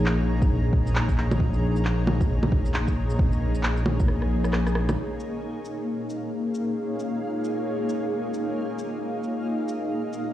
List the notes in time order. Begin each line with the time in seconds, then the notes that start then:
Already playing: A#1 A#3 D#4 G#4 C#5 A#5
0.06 clap
0.42 kick, shaker
0.73 kick
0.87 shaker
0.95 clap
1.09 kick, shaker
1.18 clap
1.31 low bongo, shaker
1.40 kick
1.54 shaker
1.76 shaker
1.85 clap
2.07 low bongo
2.21 kick, shaker
2.43 low bongo
2.52 kick
2.65 shaker
2.74 clap
2.88 kick, shaker
3.10 shaker
3.19 kick
3.32 shaker
3.55 shaker
3.63 clap
3.77 shaker
3.86 low bongo
4.00 kick, shaker
4.08 cross-stick
4.22 cross-stick
4.44 cross-stick, shaker
4.53 cross-stick, clap
4.67 cross-stick, shaker
4.75 cross-stick
4.89 cross-stick, low bongo, shaker
4.98 A#3 F4 F5
5.07 D#4
5.20 cabasa
5.35 C#5 F5
5.39 G#4
5.65 cabasa
6.10 cabasa
6.55 cabasa
7.00 cabasa
7.44 cabasa
7.89 cabasa
8.34 cabasa
8.54 D#5
8.79 cabasa
9.24 cabasa
9.68 cabasa
10.13 cabasa